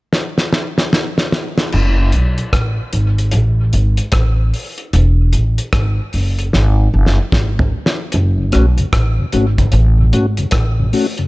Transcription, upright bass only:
1.74 F#1
2.14 B1
2.53 A1
2.93 G#1
3.33 A1
3.74 G#1
4.13 A1
4.93 E1
5.33 A1
5.73 G#1
6.14 F#1
6.54 G#1
6.94 F#1
7.33 G#1
8.14 F#1
8.54 B1
8.93 A1
9.33 G#1
9.73 A1
10.13 G#1
10.53 A1

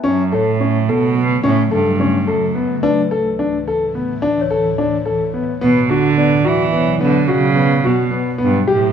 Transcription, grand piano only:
0.04 C#4
0.32 A4
0.60 C#4
0.89 A4
1.16 B3
1.44 C#4
1.71 A4
2.00 C#4
2.27 A4
2.55 B3
2.83 D4
3.11 A4
3.39 D4
3.68 A4
3.95 B3
4.22 D4
4.50 A4
4.78 D4
5.05 A4
5.34 B3
5.61 B3
5.90 F#4
6.17 B3
6.44 F#4
6.72 B3
7.01 B3
7.28 F#4
7.55 B3
7.84 F#4
8.11 B3
8.38 B3
8.67 G4

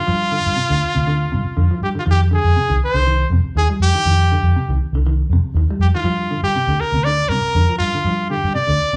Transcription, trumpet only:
Already playing: F4
1.83 G4
1.99 F4
2.11 G4
2.34 G#4
2.85 C5
3.57 G#4
3.82 G4
5.81 G4
5.95 F4
6.43 G4
6.80 A#4
7.04 D5
7.29 A#4
7.78 F4
8.30 G4
8.54 D5

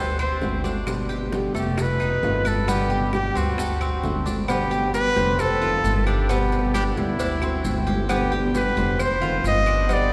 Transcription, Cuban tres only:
Already playing: A4
0.19 C4
0.64 D4
1.09 G4
1.55 A3
2.00 D#4
2.45 B4
2.68 B3
2.90 G4
3.35 C4
3.58 A4
3.81 C4
4.26 D4
4.48 B3
4.71 G4
5.16 C5
5.62 F4
6.07 D4
6.29 B3
6.75 D4
7.20 D4
7.42 C4
7.87 G4
8.09 B3
8.32 G4
8.77 C5
9.22 F4
9.66 D4
9.89 B3

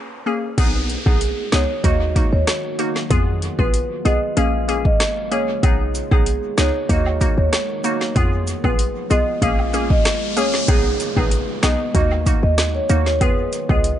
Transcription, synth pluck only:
0.26 A#3 C#4 G#4
0.58 B3 D#4 G#4
1.06 B3 D#4 G#4
1.52 B3 D#4 G#4
1.84 A#3 D#4 F#4
2.16 A#3 D#4 F#4
2.79 A#3 D#4 F#4
3.10 B3 F4 G#4
3.59 B3 F4 G#4
4.05 B3 F4 G#4
4.37 A#3 C#4 G#4
4.68 A#3 C#4 G#4
5.31 A#3 C#4 G#4
5.63 B3 D#4 G#4
6.11 B3 D#4 G#4
6.58 B3 D#4 G#4
6.89 A#3 D#4 F#4
7.21 A#3 D#4 F#4
7.84 A#3 D#4 F#4
8.16 B3 F4 G#4
8.64 B3 F4 G#4
9.10 B3 F4 G#4
9.42 A#3 C#4 G#4
9.73 A#3 C#4 G#4
10.36 A#3 C#4 G#4
10.68 B3 D#4 G#4
11.17 B3 D#4 G#4
11.63 B3 D#4 G#4
11.95 A#3 D#4 F#4
12.26 A#3 D#4 F#4
12.89 A#3 D#4 F#4
13.21 B3 F4 G#4
13.69 B3 F4 G#4

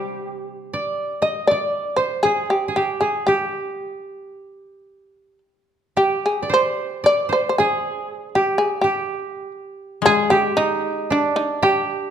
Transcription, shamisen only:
Already playing: G4
1.22 D#5
1.47 D5
1.96 C5
2.23 G#4
2.50 G4
2.76 G4
3.01 G#4
3.27 G4
5.97 G4
6.26 G#4
6.54 C5
7.06 D5
7.33 C5
7.49 C5
7.58 G#4
8.35 G4
8.58 G#4
8.81 G4
10.06 G#4
10.30 G4
10.57 D#4
11.12 D4
11.36 D#4
11.63 G4

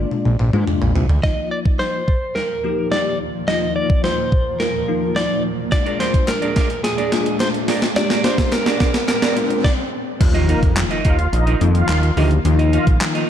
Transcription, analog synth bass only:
0.26 A#1
0.40 A#1
0.54 G#2
0.82 A#1
0.95 C2
1.10 D2
10.21 D#2
10.63 F2
11.05 D#2
11.33 A#1
11.61 F2
11.89 D#2
12.17 D2
12.45 D#2
12.87 A#1

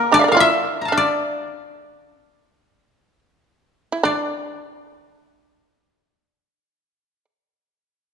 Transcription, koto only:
Already playing: A#4
0.14 D5
0.32 F5
0.40 E5
0.81 A5 A#5
0.88 F5
0.93 E5
0.97 D5
4.05 D5

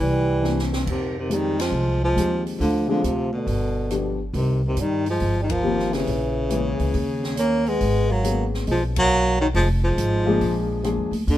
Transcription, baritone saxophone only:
0.00 E3
0.90 C3
1.19 C3
1.33 D#3
1.61 F3
2.04 F3
2.60 D3
2.90 D3
3.03 C3
3.33 B2
4.35 C3
4.68 C3
4.81 D#3
5.10 F3
5.43 D#3
5.51 F3
5.94 C#3
7.39 A#3
7.68 G#3
8.12 F#3
8.71 F3
8.98 F#3
9.41 D#3
9.56 F3
9.84 F3
11.30 D3

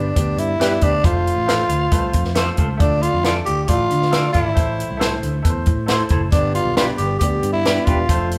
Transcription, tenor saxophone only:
Already playing: D4
0.39 E4
0.83 D4
1.05 F4
2.81 D4
3.02 F4
3.25 F4
3.46 G4
3.64 G4
3.68 F4
4.33 E4
6.32 D4
6.54 F4
6.77 F4
6.98 G4
7.19 G4
7.53 E4
7.86 F4

